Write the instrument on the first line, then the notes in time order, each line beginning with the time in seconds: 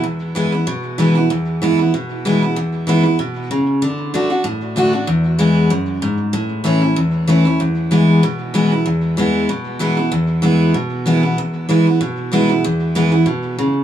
steel-string acoustic guitar
0.04 E2
0.35 E3 G#3 B3 E4
0.52 B3 E4
0.67 B2
0.98 E3 G#3 B3 E4
1.15 B3 E4
1.30 E2
1.62 E3 G#3 B3 E4
1.79 B3 E4
1.94 B2
2.25 E3 G#3 B3 E4
2.42 B3 E4
2.56 E2
2.87 E3 G#3 B3 E4
3.03 B3 E4
3.19 B2
3.51 C#3
3.82 D3
4.14 D3 A3 D4 F#4
4.30 D4 F#4
4.44 A2
4.76 D3 A3 D4 F#4
4.93 D4 F#4
5.07 E2
5.38 E3 G#3 B3 E4
5.70 F#2
6.02 G#2
6.33 A2
6.64 E3 A3 C#4 E4
6.82 C#4 E4
6.96 E2
7.27 E3 A3 C#4 E4
7.45 C#4 E4
7.60 E2
7.91 E3 G#3 B3 E4
8.23 B2
8.54 E3 G#3 B3 E4
8.72 B3 E4
8.86 E2
9.17 E3 G#3 B3 E4
9.49 B2
9.79 E3 G#3 B3 E4
9.97 B3 E4
10.12 E2
10.42 E3 G#3 B3 E4
10.74 B2
11.06 E3 G#3 B3 E4
11.23 B3 E4
11.38 E2
11.69 E3 G#3 B3 E4
11.87 B3 E4
12.01 B2
12.32 E3 G#3 B3 E4
12.49 B3 E4
12.64 E2
12.95 E3 G#3 B3 E4
13.12 B3 E4
13.26 B2
13.58 C#3